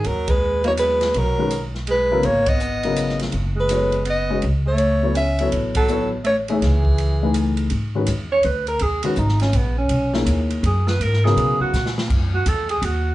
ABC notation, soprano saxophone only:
X:1
M:3/4
L:1/16
Q:"Swing" 1/4=164
K:G#phr
V:1 name="Soprano saxophone"
^A2 B4 c2 B4 | ^A4- A z3 B4 | c2 d8 z2 | z2 B6 d4 |
z2 c6 e4 | z2 A4 z2 c2 G2- | G8- G2 z2 | z12 |
z12 | z12 | z12 | z12 |]